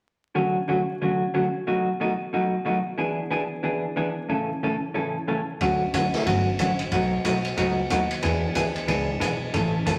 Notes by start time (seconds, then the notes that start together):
0.35 D3 F#3 A3 C#4 F#4
0.68 D3 F#3 A3 C#4 F#4
1.02 D3 F#3 A3 C#4 F#4
1.34 D3 F#3 A3 C#4 F#4
1.67 B2 F#3 A3 D#4 F#4
2.00 B2 F#3 A3 D#4 F#4
2.33 B2 F#3 A3 D#4 F#4
2.65 B2 F#3 A3 D#4 F#4
2.98 E3 B3 D4 G#4
3.30 E3 B3 D4 G#4
3.63 E3 B3 D4 G#4
3.96 E3 B3 D4 G#4
4.29 A2 C#3 E3 A3 C#4 A4
4.63 A2 C#3 E3 A3 C#4 A4
4.94 A2 C#3 E3 A3 C#4 A4
5.28 A2 C#3 E3 A3 C#4 A4
5.61 D2 D3 F#3 A3 C#4 F#4, kick, ride
5.93 D3 F#3 A3 C#4 F#4, kick, hi-hat pedal, ride
6.14 snare, ride
6.26 G1 D3 F#3 A3 C#4 F#4, kick, ride
6.59 A1 D3 F#3 A3 C#4 F#4, kick, hi-hat pedal, ride
6.79 ride
6.92 B1 B2 F#3 A3 D#4 F#4, kick, ride
7.24 B1 B2 F#3 A3 D#4 F#4, kick, hi-hat pedal, ride
7.45 ride
7.57 C#2 B2 F#3 A3 D#4 F#4, kick, ride
7.90 D#2 B2 F#3 A3 D#4 F#4, kick, hi-hat pedal, ride
8.11 ride
8.23 E2 E3 B3 D4 G#4, kick, ride
8.55 D2 E3 B3 D4 G#4, kick, hi-hat pedal, ride
8.76 ride
8.87 C#2 E3 B3 D4 G#4, kick, ride
9.20 B1 E3 B3 D4 G#4, kick, hi-hat pedal, ride
9.54 A1 C#3 E3 A3 C#4 A4, kick, ride
9.86 F#1 C#3 E3 A3 C#4 A4, kick, hi-hat pedal, ride